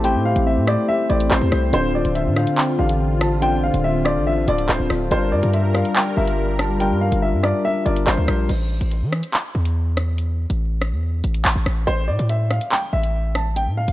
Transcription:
Already playing: 808-style bass A1, tine electric piano A3 E4 G4 C5, analog synth pad A3 C4 G4
0.03 tine electric piano A3 E4 G4 C5, grand piano G5, closed hi-hat
0.15 808-style bass A2
0.25 grand piano F5
0.36 808-style bass A1, closed hi-hat
0.47 grand piano E5
0.57 808-style bass A2
0.67 tine electric piano A3 E4 G4 C5, grand piano D5, cross-stick, closed hi-hat
0.88 grand piano E5
1.09 808-style bass A1, tine electric piano A3 E4 G4 C5, grand piano D5, closed hi-hat
1.20 closed hi-hat
1.31 808-style bass A1, grand piano C5, clap
1.41 808-style bass E2
1.51 808-style bass C2, tine electric piano A3 E4 G4 C5, cross-stick, closed hi-hat
1.72 808-style bass D1, tine electric piano D3 D4 F4 C5, analog synth pad D3 F4, grand piano C5, closed hi-hat
1.95 grand piano D5
2.05 808-style bass D1, closed hi-hat
2.15 grand piano E5, closed hi-hat
2.26 808-style bass A2
2.36 tine electric piano D3 D4 F4 C5, grand piano F5, cross-stick, closed hi-hat
2.47 closed hi-hat
2.58 grand piano G5, clap
2.78 808-style bass A1, tine electric piano D3 D4 F4 G4, grand piano F5
2.89 closed hi-hat
3.21 grand piano A5, cross-stick, closed hi-hat
3.41 tine electric piano D3 D4 F4 C5, grand piano G5, closed hi-hat
3.64 grand piano F5
3.74 808-style bass D1, closed hi-hat
3.84 grand piano E5
4.05 tine electric piano D3 D4 F4 C5, grand piano D5, cross-stick, closed hi-hat
4.16 808-style bass A1
4.27 grand piano E5
4.47 808-style bass D1, tine electric piano D3 D4 F4 A4, grand piano D5, closed hi-hat
4.58 closed hi-hat
4.69 808-style bass D1, grand piano C5, clap
4.80 808-style bass D1
4.89 808-style bass D1, tine electric piano D3 D4 F4 C5, cross-stick, open hi-hat
5.10 808-style bass G1, tine electric piano G3 D4 F4 A#4, analog synth pad G3 A#4, grand piano C5, closed hi-hat
5.32 808-style bass G2, grand piano D5
5.43 808-style bass G2, closed hi-hat
5.53 grand piano E5, closed hi-hat
5.74 tine electric piano G3 D4 F4 A#4, grand piano F5, cross-stick, closed hi-hat
5.85 closed hi-hat
5.95 grand piano G5, clap
6.16 808-style bass G1, tine electric piano G3 D4 F4 A#4, grand piano E5
6.27 closed hi-hat
6.59 grand piano A5, cross-stick, closed hi-hat
6.79 tine electric piano G3 D4 F4 A#4, grand piano G5, closed hi-hat
6.91 808-style bass G2
7.01 grand piano F5
7.12 808-style bass G1, closed hi-hat
7.22 grand piano E5
7.33 808-style bass G2
7.43 tine electric piano G3 D4 F4 A#4, grand piano D5, cross-stick, closed hi-hat
7.65 grand piano E5
7.85 808-style bass G1, tine electric piano G3 D4 F4 A#4, grand piano D5, closed hi-hat
7.96 closed hi-hat
8.07 808-style bass G1, grand piano C5, clap
8.18 808-style bass D2
8.27 808-style bass A#1, tine electric piano G3 D4 F4 A#4, cross-stick, closed hi-hat
8.49 808-style bass A1, closed hi-hat, crash
8.81 808-style bass A1, closed hi-hat
8.91 closed hi-hat
9.02 808-style bass E3
9.13 cross-stick, closed hi-hat
9.23 closed hi-hat
9.34 clap
9.55 808-style bass E2
9.65 closed hi-hat
9.97 cross-stick, closed hi-hat
10.18 closed hi-hat
10.50 808-style bass A1, closed hi-hat
10.82 cross-stick, closed hi-hat
10.92 808-style bass E2
11.24 808-style bass A1, closed hi-hat
11.34 closed hi-hat
11.45 808-style bass A1, clap
11.56 808-style bass A1
11.66 808-style bass A1, cross-stick, open hi-hat
11.87 808-style bass A1, grand piano C5, closed hi-hat
12.08 808-style bass A2, grand piano D5
12.19 808-style bass A2, closed hi-hat
12.29 grand piano E5, closed hi-hat
12.51 grand piano F5, cross-stick, closed hi-hat
12.61 closed hi-hat
12.72 grand piano G5, clap
12.93 808-style bass A1, grand piano E5
13.03 closed hi-hat
13.35 grand piano A5, cross-stick, closed hi-hat
13.56 grand piano G5, closed hi-hat
13.67 808-style bass A2
13.77 grand piano F5
13.88 808-style bass A1, closed hi-hat

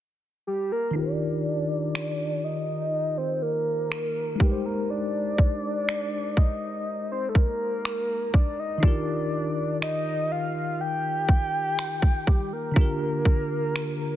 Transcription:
0.47 soft synth lead G4
0.72 soft synth lead A#4
0.91 tine electric piano D#3 D#4
0.96 tine electric piano F4 G4, soft synth lead D5
1.01 tine electric piano A#4
1.95 finger snap
2.44 soft synth lead D#5
3.18 soft synth lead C5
3.42 soft synth lead A#4
3.92 finger snap
4.35 tine electric piano G#3 D#4
4.40 tine electric piano G4 A#4, soft synth lead G4, kick
4.45 tine electric piano B4
4.52 tine electric piano C5
4.65 soft synth lead A#4
4.90 soft synth lead D5
5.38 kick
5.89 finger snap
6.37 soft synth lead D#5, kick
7.12 soft synth lead C5
7.29 soft synth lead A4
7.35 soft synth lead A#4, kick
7.85 finger snap
8.34 soft synth lead D5, kick
8.59 soft synth lead D#5
8.78 tine electric piano D#3 D#4
8.83 tine electric piano F4 G4, soft synth lead D5, kick
8.88 tine electric piano A#4
9.82 soft synth lead D#5, finger snap
10.32 soft synth lead F5
10.81 soft synth lead G5
11.29 kick
11.79 finger snap
12.02 kick
12.27 soft synth lead G4, kick
12.53 soft synth lead A#4
12.71 tine electric piano D3 D4
12.76 tine electric piano F4 G4, kick
12.81 tine electric piano A#4
13.25 kick
13.76 finger snap

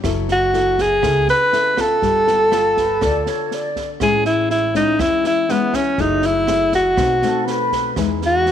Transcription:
0.03 upright bass F#1, nylon-string guitar F#3 B3 E4 A4, kick, cross-stick, snare
0.28 alto saxophone F#4, snare
0.53 nylon-string guitar B3 E4 A4, snare
0.78 alto saxophone G#4, kick, snare
1.02 upright bass C#2, nylon-string guitar C#3 B3 E4 A4, kick, cross-stick, snare
1.28 alto saxophone B4, snare
1.52 nylon-string guitar B3 E4 A4, snare
1.77 nylon-string guitar B3 F4 A4, alto saxophone A4, kick, cross-stick, snare
2.02 upright bass G1, nylon-string guitar G3, kick, snare
2.27 nylon-string guitar B3 F4 A4, flute section A4, snare
2.51 nylon-string guitar B3 F4 A4, cross-stick, snare
2.77 flute section B4, kick, snare
3.01 upright bass D2, nylon-string guitar D3 B3 F4 A4, flute section D5, kick, cross-stick, snare
3.25 flute section C#5, snare
3.51 flute section D5, snare
3.76 kick, snare
4.00 upright bass A1, nylon-string guitar A2 G#3 C#4 E4, alto saxophone G#4, kick, cross-stick, snare
4.25 alto saxophone E4, snare
4.50 alto saxophone E4, snare
4.74 nylon-string guitar G#3 C#4 E4, alto saxophone D#4, kick, snare
4.99 upright bass E2, nylon-string guitar E3, alto saxophone E4, kick, cross-stick, snare
5.24 alto saxophone E4, snare
5.49 nylon-string guitar G#3 C#4 E4, alto saxophone B3, snare
5.73 alto saxophone C#4, kick, cross-stick, snare
5.98 upright bass F#1, nylon-string guitar F#3 A3 E4 G#4, alto saxophone D#4, kick, snare
6.22 alto saxophone E4, snare
6.47 nylon-string guitar A3 E4 G#4, cross-stick, snare
6.72 alto saxophone F#4, kick, snare
6.97 upright bass B1, nylon-string guitar B2 A3 C4 D#4, kick, cross-stick, snare
7.22 nylon-string guitar A3 C4 D#4, flute section A4, snare
7.45 flute section B4, snare
7.72 kick, snare
7.96 upright bass E2, nylon-string guitar E3 G#3 B3 D#4, kick, cross-stick, snare
8.22 snare
8.26 alto saxophone F#4
8.46 snare

